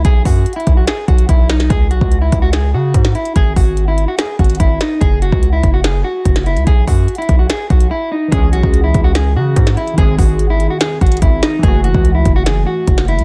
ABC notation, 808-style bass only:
X:1
M:4/4
L:1/16
Q:1/4=145
K:C#m
V:1 name="808-style bass" clef=bass
B,,,2 F,,2 z2 B,,,2 z2 B,,,2 B,,,4 | C,,2 B,,, C,,3 C,,4 C,2 G,,2 z2 | G,,,2 G,,,4- G,,, z3 G,,,2 G,,,2 z2 | F,,,3 C,,3 F,,,4 z2 F,,,3 C,, |
B,,,2 F,,2 z2 B,,,2 z2 B,,,2 z4 | C,,2 B,,, C,,3 C,,4 C,2 G,,2 z2 | G,,,2 G,,,4- G,,, z3 G,,,2 G,,,2 z2 | F,,,3 C,,3 F,,,4 z2 F,,,3 C,, |]